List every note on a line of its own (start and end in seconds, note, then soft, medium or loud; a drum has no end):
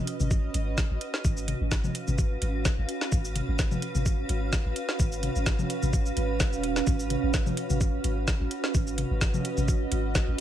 0.00 10.41 C#4 loud
0.00 10.41 F#4 medium
0.00 10.41 B4 medium
0.00 0.38 D#5 medium
0.07 closed hi-hat medium
0.20 0.49 G#1 medium
0.20 high tom medium
0.20 shaker soft
0.31 kick loud
0.31 shaker medium
0.35 7.88 F5 medium
0.54 0.84 G#1 medium
0.54 closed hi-hat medium
0.78 kick loud
0.78 snare medium
0.78 shaker medium
0.90 0.98 G#1 medium
1.01 closed hi-hat medium
1.14 snare medium
1.25 1.54 G#1 loud
1.25 kick loud
1.25 shaker medium
1.37 shaker soft
1.48 closed hi-hat medium
1.48 high tom medium
1.61 1.90 G#1 medium
1.71 kick loud
1.71 snare medium
1.71 shaker medium
1.84 high tom medium
1.84 low conga medium
1.84 shaker soft
1.95 closed hi-hat medium
2.08 2.36 G#1 medium
2.08 high tom medium
2.08 shaker soft
2.18 kick loud
2.18 shaker medium
2.42 2.72 G#1 medium
2.42 closed hi-hat medium
2.65 kick loud
2.65 snare medium
2.65 shaker medium
2.78 2.85 G#1 medium
2.89 closed hi-hat medium
3.01 snare medium
3.12 3.42 G#1 loud
3.12 kick loud
3.12 shaker medium
3.25 shaker soft
3.35 closed hi-hat medium
3.35 high tom medium
3.48 3.77 G#1 medium
3.59 kick loud
3.59 snare medium
3.59 shaker medium
3.72 high tom medium
3.72 low conga medium
3.72 shaker soft
3.82 closed hi-hat medium
3.95 4.24 G#1 medium
3.95 high tom medium
3.95 shaker soft
4.06 kick loud
4.06 shaker medium
4.29 4.59 G#1 medium
4.29 closed hi-hat medium
4.53 kick loud
4.53 snare medium
4.53 shaker medium
4.65 4.73 G#1 medium
4.76 closed hi-hat medium
4.89 snare medium
4.99 5.29 G#1 loud
4.99 kick loud
4.99 shaker medium
5.12 shaker soft
5.23 closed hi-hat medium
5.23 high tom medium
5.36 5.65 G#1 medium
5.36 shaker soft
5.46 kick loud
5.46 snare medium
5.46 shaker medium
5.59 high tom medium
5.59 low conga medium
5.59 shaker soft
5.70 closed hi-hat medium
5.82 6.11 G#1 medium
5.82 high tom medium
5.82 shaker soft
5.93 kick loud
5.93 shaker medium
6.06 shaker soft
6.17 6.54 G#1 medium
6.17 closed hi-hat medium
6.40 kick loud
6.40 snare loud
6.40 shaker medium
6.53 6.82 D#1 medium
6.53 shaker soft
6.64 closed hi-hat medium
6.76 snare medium
6.76 shaker soft
6.87 7.17 G#1 loud
6.87 kick loud
6.87 shaker medium
7.00 shaker soft
7.10 closed hi-hat medium
7.10 high tom medium
7.23 7.52 G#1 medium
7.34 kick loud
7.34 snare loud
7.34 shaker medium
7.46 high tom medium
7.46 low conga medium
7.46 shaker soft
7.57 closed hi-hat medium
7.70 7.99 G#1 medium
7.70 high tom medium
7.70 shaker soft
7.81 kick loud
7.81 shaker medium
7.86 10.41 D#5 medium
8.04 8.34 G#1 medium
8.04 closed hi-hat medium
8.28 kick loud
8.28 snare loud
8.28 shaker medium
8.40 8.48 G#1 medium
8.51 closed hi-hat medium
8.64 snare medium
8.74 9.04 G#1 loud
8.74 kick loud
8.74 shaker medium
8.87 shaker soft
8.98 closed hi-hat loud
8.98 high tom medium
9.11 9.39 G#1 medium
9.21 kick loud
9.21 snare medium
9.21 shaker medium
9.34 high tom medium
9.34 low conga medium
9.34 shaker soft
9.45 closed hi-hat loud
9.57 9.86 G#1 medium
9.57 high tom medium
9.57 shaker soft
9.68 kick loud
9.68 shaker medium
9.92 10.21 G#1 medium
9.92 closed hi-hat medium
10.15 kick loud
10.15 snare loud
10.15 shaker medium
10.28 10.35 G#1 medium